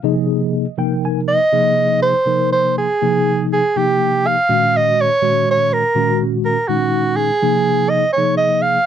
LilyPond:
<<
  \new Staff \with { instrumentName = "Soprano saxophone" } { \time 6/8 \key f \minor \tempo 4. = 81 r2 r8 ees''8~ | \key f \phrygian ees''4 c''4 c''8 aes'8~ | aes'4 aes'8 g'4 f''8~ | f''8 ees''8 des''4 des''8 bes'8~ |
bes'8 r8 bes'8 ges'4 aes'8~ | aes'4 ees''8 des''8 ees''8 f''8 | }
  \new Staff \with { instrumentName = "Tine electric piano" } { \time 6/8 \key f \minor ees''4. g''8 aes''8 r8 | \key f \phrygian r2. | r2. | r2. |
r2. | r2. | }
  \new Staff \with { instrumentName = "Tine electric piano" } { \time 6/8 \key f \minor <c f bes ees' aes'>4 r8 <c f bes ees' bes'>4 r8 | \key f \phrygian <c f bes ees' aes'>4 r8 <c f bes ees' bes'>4 r8 | <c f bes ees' aes'>4 r8 <c f bes ees' g'>4 r8 | <bes, ees aes des' ges'>4 r8 <bes, ees aes des' ges'>4 r8 |
<bes, ees aes des' ges'>4 r8 <bes, ees aes des' ees'>4 r8 | <c f bes ees' aes'>4 r8 <c f bes ees' aes'>4 r8 | }
>>